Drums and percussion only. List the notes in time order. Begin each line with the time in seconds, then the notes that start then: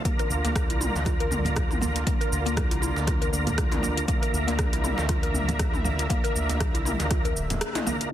0.05 kick, closed hi-hat, high conga, cabasa
0.19 closed hi-hat, cabasa
0.30 high conga, cabasa
0.45 closed hi-hat, djembe slap, muted conga, djembe tone, cabasa
0.56 kick, cross-stick, closed hi-hat, high conga, cabasa
0.70 closed hi-hat, cabasa
0.80 mid tom, muted conga, djembe tone, cabasa
0.96 djembe slap, cabasa
1.05 kick, cross-stick, closed hi-hat, high conga, low conga, cabasa
1.20 closed hi-hat, muted conga
1.31 mid tom, high conga, djembe bass, cabasa
1.45 closed hi-hat, djembe tone, low conga, cabasa
1.56 kick, cross-stick, closed hi-hat, muted conga, low conga, cabasa
1.71 mid tom, cabasa
1.81 low conga, djembe bass, cabasa
1.96 closed hi-hat, muted conga, djembe slap, high conga, cabasa
2.07 kick, closed hi-hat, high conga, cabasa
2.21 closed hi-hat, cabasa
2.32 high conga, cabasa
2.45 closed hi-hat, muted conga, cabasa
2.57 kick, cross-stick, closed hi-hat, high conga, low conga, cabasa
2.71 closed hi-hat, cabasa
2.82 djembe tone, cabasa
2.96 djembe slap, cabasa
3.08 kick, cross-stick, closed hi-hat, cabasa
3.21 closed hi-hat, muted conga, high conga, cabasa
3.33 cabasa
3.47 closed hi-hat, djembe tone, low conga, cabasa
3.57 kick, cross-stick, closed hi-hat, muted conga, cabasa
3.72 closed hi-hat, mid tom, djembe slap, cabasa
3.82 high conga, djembe bass, cabasa
3.97 closed hi-hat, muted conga, cabasa
4.08 kick, closed hi-hat, high conga, cabasa
4.23 closed hi-hat, cabasa
4.34 high conga, cabasa
4.48 closed hi-hat, djembe slap, muted conga, djembe tone, cabasa
4.58 kick, cross-stick, closed hi-hat, high conga, cabasa
4.73 closed hi-hat, cabasa
4.84 mid tom, muted conga, djembe tone, cabasa
4.98 djembe slap, cabasa
5.09 kick, cross-stick, closed hi-hat, high conga, low conga, cabasa
5.23 closed hi-hat, muted conga
5.34 mid tom, high conga, djembe bass, cabasa
5.49 closed hi-hat, djembe tone, low conga, cabasa
5.59 kick, cross-stick, closed hi-hat, muted conga, low conga, cabasa
5.74 mid tom, cabasa
5.85 low conga, djembe bass, cabasa
5.99 closed hi-hat, muted conga, djembe slap, high conga, cabasa
6.10 kick, closed hi-hat, high conga, cabasa
6.25 closed hi-hat, cabasa
6.36 high conga, cabasa
6.49 closed hi-hat, muted conga, djembe slap, djembe tone, cabasa
6.60 kick, cross-stick, closed hi-hat, high conga, low conga, cabasa
6.75 closed hi-hat, cabasa
6.86 mid tom, djembe tone, cabasa
6.99 closed hi-hat, djembe slap, cabasa
7.11 kick, cross-stick, closed hi-hat, cabasa
7.25 closed hi-hat, muted conga, high conga, cabasa
7.37 cabasa
7.50 closed hi-hat, djembe tone, low conga, cabasa
7.61 cross-stick, closed hi-hat, cabasa
7.75 closed hi-hat, mid tom, djembe slap, cabasa
7.86 high conga, djembe bass, cabasa
8.01 closed hi-hat, muted conga, cabasa